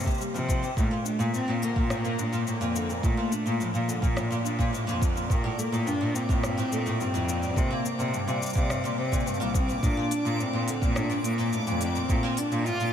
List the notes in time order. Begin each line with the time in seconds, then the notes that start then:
Already playing: A#3
0.03 C3, kick, cabasa
0.10 cabasa
0.14 cabasa
0.18 G3, cabasa
0.21 cabasa
0.34 C3 F3, cabasa
0.49 F3, kick, cabasa
0.63 C3, cabasa
0.76 A2 A#2 A3 D5 D6, kick, cabasa
0.91 A#2
1.05 A3 D4, cabasa
1.19 A#2, cabasa
1.33 A2 C4, cabasa
1.48 A#2
1.62 D3 A#3, cabasa
1.76 A#2, kick
1.90 A2 A#3, cross-stick, cabasa
2.04 A#2, cabasa
2.18 A#2 D4, cabasa
2.33 A#2, cabasa
2.47 A2 A#3, cabasa
2.61 F2 A#2, cabasa
2.75 D3, cabasa
2.89 A#2, cabasa
3.03 A2 A#2 A3, kick, cabasa
3.17 A#2
3.32 D4, cabasa
3.46 A#2, cabasa
3.60 A2 F3, cabasa
3.74 A#2, cabasa
3.88 D3, cabasa
4.02 A#2, kick, cabasa
4.16 A2, cross-stick, cabasa
4.31 A#2, cabasa
4.44 A#2 D4, cabasa
4.59 A#2, kick, cabasa
4.73 A2, cabasa
4.87 F2 A#2, cabasa
5.01 D3, kick, cabasa
5.15 A#2, cabasa
5.30 G2 A#2 A#3, kick, cabasa
5.44 A2
5.58 A3 A#3, cabasa
5.72 A2 A#2, cabasa
5.86 G2 D4, cabasa
6.01 A2 A#2
6.14 A#2 C4, cabasa
6.29 A2 A#2, kick, cabasa
6.42 G2 C4, cross-stick, cabasa
6.58 A2, cabasa
6.71 A#2 A3, cabasa
6.86 A2, cabasa
6.99 G2 C4, cabasa
7.13 F2 A2, cabasa
7.28 A#2, cabasa
7.42 A2, cabasa
7.56 G2 C3 A#3, kick, cabasa
7.71 A#2
7.85 C4, cabasa
7.98 A#2 C3, cabasa
8.13 G2 G3, cabasa
8.27 A#2 C3, cabasa
8.41 C3, cabasa
8.46 cabasa
8.49 cabasa
8.53 A#2 C3, kick, cabasa
8.70 G2, cross-stick, cabasa
8.84 A#2, cabasa
8.98 C3 C4
9.12 A#2, kick, cabasa
9.20 cabasa
9.26 G2, cabasa
9.34 cabasa
9.40 C2 A#2, cabasa
9.54 C3 C4, kick, cabasa
9.68 A#2, cabasa
9.83 A2 A#2 D4, kick, cabasa
9.97 A#2
10.11 D4, open hi-hat, cabasa
10.25 A#2, cabasa
10.39 A2 C4, cabasa
10.53 A#2
10.67 D3, open hi-hat, cabasa
10.82 A#2, kick, cabasa
10.95 A2 D4, cross-stick, cabasa
11.10 A#2, cabasa
11.24 A#2 A#3 D4, open hi-hat, cabasa
11.38 A#2, cabasa
11.53 A2 A3, cabasa
11.67 F2 A#2, cabasa
11.81 D3 C4, open hi-hat, cabasa
11.95 A#2, cabasa
12.09 A2 A#2, kick, cabasa
12.23 A#2
12.37 D4, open hi-hat, cabasa
12.51 A#2, cabasa
12.66 A2 F4, cabasa
12.80 A#2, cabasa